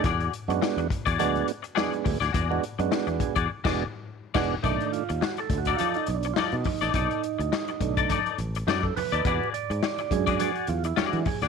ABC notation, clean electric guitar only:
X:1
M:4/4
L:1/16
Q:"Swing 16ths" 1/4=104
K:E
V:1 name="Clean electric guitar"
[FG=d]2 z4 z [FGd] [FGd]2 z2 [FGd] z2 [FGd] | [FG=d]2 z4 z [FGd] z [FGd]2 z3 [FGd]2 | [DA=d]2 z4 z [^DA=d] [^DA=d]2 z2 [^DA=d] z2 [^DA=d] | [DA=d]2 z4 z [^DA=d] [^DA=d]2 z2 [^DA=d] z2 [^DA=d] |
[FG=d]2 z4 z [FGd] [FGd]2 z2 [FGd] z2 [FGd] |]